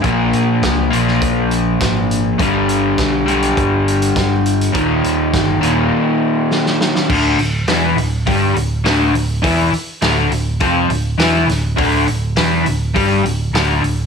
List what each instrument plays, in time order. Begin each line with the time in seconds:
0.02 picked electric bass A#1, overdriven electric guitar A#2 F3 A#3, kick, closed hi-hat
0.33 picked electric bass A#2, closed hi-hat
0.62 picked electric bass C#2, kick, snare, closed hi-hat
0.91 picked electric bass A#1, overdriven electric guitar F3 A#3, closed hi-hat
0.95 overdriven electric guitar A#2
1.08 snare
1.21 picked electric bass A#1, kick, closed hi-hat
1.51 closed hi-hat
1.80 picked electric bass G#1, kick, snare, closed hi-hat
2.11 closed hi-hat
2.38 picked electric bass G1, overdriven electric guitar G2 D3 G3, kick, closed hi-hat
2.69 closed hi-hat
2.98 picked electric bass B1, kick, snare, closed hi-hat
3.26 overdriven electric guitar G2 D3 G3, closed hi-hat
3.42 closed hi-hat
3.57 picked electric bass G1, kick, closed hi-hat
3.88 closed hi-hat
4.02 closed hi-hat
4.16 picked electric bass G1, kick, snare, closed hi-hat
4.46 closed hi-hat
4.61 closed hi-hat
4.72 picked electric bass D#1, overdriven electric guitar D#2 A#2 D#3, kick, closed hi-hat
5.04 picked electric bass D#2, closed hi-hat
5.33 picked electric bass G1, kick, snare, closed hi-hat
5.61 picked electric bass D#1, overdriven electric guitar D#2 A#2 D#3, closed hi-hat
6.51 snare
6.66 snare
6.81 snare
6.96 snare
7.09 picked electric bass D1, overdriven electric guitar D2 D3, kick, crash
7.37 picked electric bass D1, overdriven electric guitar D2, open hi-hat
7.66 picked electric bass E1, overdriven electric guitar E2 E3, snare, open hi-hat
7.96 picked electric bass D1, overdriven electric guitar D2, open hi-hat
8.26 picked electric bass G1, overdriven electric guitar G2 G3, kick, open hi-hat
8.55 picked electric bass D1, overdriven electric guitar D2, open hi-hat
8.84 picked electric bass D1, overdriven electric guitar D2 D3, snare, open hi-hat
9.13 picked electric bass D1, overdriven electric guitar D2, open hi-hat
9.42 picked electric bass E1, overdriven electric guitar E2 E3, kick, open hi-hat
9.72 muted picked electric bass stroke, muted overdriven electric guitar stroke, open hi-hat
10.02 picked electric bass D1, overdriven electric guitar D2 D3, snare, open hi-hat
10.30 picked electric bass D1, overdriven electric guitar D2, open hi-hat
10.60 picked electric bass F1, overdriven electric guitar F2 F3, kick, open hi-hat
10.88 picked electric bass D1, overdriven electric guitar D2, open hi-hat
11.18 picked electric bass E1, overdriven electric guitar E2 E3, snare, open hi-hat
11.48 picked electric bass D1, overdriven electric guitar D2, snare, open hi-hat
11.76 picked electric bass D1, overdriven electric guitar D2 D3, kick, open hi-hat
12.06 picked electric bass D1, overdriven electric guitar D2, open hi-hat
12.36 picked electric bass E1, overdriven electric guitar E2 E3, snare, open hi-hat
12.65 picked electric bass D1, overdriven electric guitar D2, open hi-hat
12.95 picked electric bass G1, overdriven electric guitar G2 G3, kick, open hi-hat
13.24 picked electric bass D1, overdriven electric guitar D2, open hi-hat
13.51 picked electric bass D1, overdriven electric guitar D2 D3, open hi-hat
13.55 snare
13.82 picked electric bass D1, overdriven electric guitar D2, open hi-hat